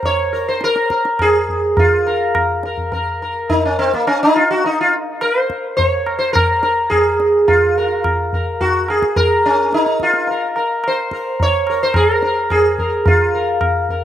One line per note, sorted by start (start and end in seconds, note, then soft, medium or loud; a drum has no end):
0.03 0.48 C#5 medium
0.03 tabla tin medium
0.03 tabla ge medium
0.33 0.59 A#4 soft
0.48 0.62 C5 medium
0.61 0.90 A#4 medium
0.61 tabla te medium
0.76 tabla te medium
0.90 1.18 A#4 soft
0.90 tabla ke medium
1.05 tabla te medium
1.19 1.74 G#4 medium
1.19 tabla na medium
1.19 tabla ge medium
1.49 tabla ge soft
1.77 2.61 F4 medium
1.77 tabla tin medium
1.77 tabla ge medium
2.07 2.33 A#4 soft
2.35 tabla na medium
2.35 tabla ge medium
2.63 2.91 A#4 soft
2.63 tabla te medium
2.78 tabla ge medium
2.92 3.20 A#4 soft
2.92 tabla tin medium
2.92 tabla ge medium
3.22 3.48 A#4 soft
3.50 3.65 D#4 medium
3.50 tabla tin medium
3.50 tabla ge medium
3.65 3.78 C#4 medium
3.79 3.93 C4 medium
3.79 tabla na medium
3.94 4.07 A#3 medium
3.94 tabla ke soft
4.07 4.22 C#4 medium
4.07 tabla na medium
4.23 4.37 D#4 medium
4.36 4.49 F4 medium
4.36 tabla na medium
4.51 4.65 F#4 loud
4.64 4.80 D#4 medium
4.64 tabla tin medium
4.81 4.93 F4 medium
5.21 5.40 A#4 medium
5.21 tabla na medium
5.40 5.76 C5 medium
5.50 tabla ke medium
5.77 6.17 C#5 medium
5.77 tabla tin medium
5.77 tabla ge medium
6.06 tabla na medium
6.19 6.33 C5 medium
6.33 6.62 A#4 medium
6.33 tabla na medium
6.33 tabla ge medium
6.63 6.90 A#4 soft
6.63 tabla te medium
6.90 7.47 G#4 medium
6.90 tabla na medium
6.90 tabla ge medium
7.20 tabla te medium
7.48 8.29 F4 medium
7.48 tabla tin medium
7.48 tabla ge medium
7.78 8.04 A#4 soft
8.04 tabla na medium
8.04 tabla ge medium
8.33 8.60 A#4 soft
8.33 tabla ge medium
8.61 8.87 F#4 medium
8.61 tabla tin medium
8.61 tabla ge medium
8.88 9.19 G#4 medium
8.88 tabla na medium
9.02 tabla ke medium
9.16 9.46 A#4 medium
9.16 tabla tin medium
9.16 tabla ge medium
9.46 9.74 C#4 medium
9.73 10.03 D#4 medium
9.73 tabla te medium
9.86 tabla te medium
10.00 10.54 F4 medium
10.00 tabla ke medium
10.13 tabla te medium
10.27 10.55 A#4 soft
10.27 tabla tin medium
10.56 10.83 A#4 soft
10.56 tabla na medium
10.84 11.42 C5 medium
10.84 tabla na medium
11.11 11.39 A#4 soft
11.11 tabla ke medium
11.40 11.83 C#5 loud
11.40 tabla tin medium
11.40 tabla ge medium
11.67 11.95 A#4 soft
11.67 tabla na medium
11.83 11.96 C5 medium
11.94 12.23 G#4 medium
11.94 tabla na medium
11.94 tabla ge medium
12.22 12.50 A#4 soft
12.22 tabla te medium
12.50 13.07 G#4 medium
12.50 tabla na medium
12.50 tabla ge medium
12.79 13.05 A#4 soft
12.79 tabla ge medium
13.06 13.86 F4 medium
13.06 tabla tin medium
13.06 tabla ge medium
13.34 13.60 A#4 soft
13.61 tabla na medium
13.61 tabla ge medium
13.89 14.04 A#4 soft
13.89 tabla ge medium